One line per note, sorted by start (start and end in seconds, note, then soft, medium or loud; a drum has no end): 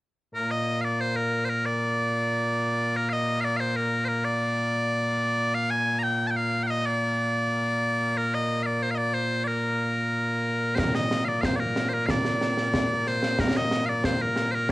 0.35 14.72 A#2 medium
0.35 14.72 A#3 medium
0.35 0.51 A#4 medium
0.51 0.81 D#5 medium
0.81 1.01 D5 medium
0.81 0.85 F5 medium
1.01 1.16 C5 medium
1.16 1.45 A#4 medium
1.45 1.49 C5 medium
1.49 1.66 A#4 medium
1.66 2.96 D5 medium
2.96 3.09 A#4 medium
3.09 3.41 D#5 medium
3.09 3.13 F5 medium
3.41 3.57 D5 loud
3.41 3.44 F5 loud
3.57 3.76 C5 medium
3.57 3.60 F5 medium
3.76 4.05 A#4 medium
4.05 4.24 A#4 medium
4.05 4.08 C5 medium
4.24 5.54 D5 medium
5.54 5.70 F5 loud
5.70 5.99 G#5 loud
5.99 6.03 A#5 loud
6.03 6.27 G5 loud
6.27 6.36 G5 medium
6.27 6.31 A5 medium
6.36 6.63 F5 loud
6.63 6.70 F5 medium
6.63 6.67 G5 medium
6.70 6.86 D#5 loud
6.86 8.17 D5 medium
8.17 8.34 A#4 medium
8.34 8.63 D#5 medium
8.63 8.82 D5 medium
8.63 8.66 F5 medium
8.82 8.91 C5 medium
8.91 8.98 D#5 medium
8.91 8.95 F5 medium
8.98 9.14 D5 medium
9.14 9.44 C5 medium
9.44 10.75 A#4 medium
9.44 9.47 D5 medium
10.75 10.79 C5 medium
10.75 concert bass drum medium
10.75 snare loud
10.79 10.95 A#4 medium
10.95 11.25 D#5 medium
10.95 snare medium
11.11 snare medium
11.25 11.41 D5 medium
11.25 11.28 F5 medium
11.41 11.56 C5 medium
11.41 11.45 F5 medium
11.41 concert bass drum medium
11.41 snare medium
11.56 11.89 A#4 medium
11.56 11.60 D5 medium
11.76 snare medium
11.89 11.94 C5 medium
11.94 12.06 A#4 medium
12.06 13.07 D5 medium
12.06 12.10 F5 medium
12.06 concert bass drum medium
12.06 snare medium
12.25 snare medium
12.41 snare medium
12.57 snare medium
12.74 concert bass drum soft
12.74 snare loud
13.07 13.40 C5 medium
13.07 snare soft
13.23 snare medium
13.39 13.57 A#4 medium
13.39 concert bass drum medium
13.39 snare loud
13.55 13.86 D#5 medium
13.55 snare medium
13.71 snare medium
13.86 14.05 D5 medium
13.86 13.89 F5 medium
14.04 14.22 C5 medium
14.04 concert bass drum medium
14.04 snare loud
14.22 14.51 A#4 medium
14.36 snare medium
14.51 14.70 A#4 medium
14.51 14.55 C5 medium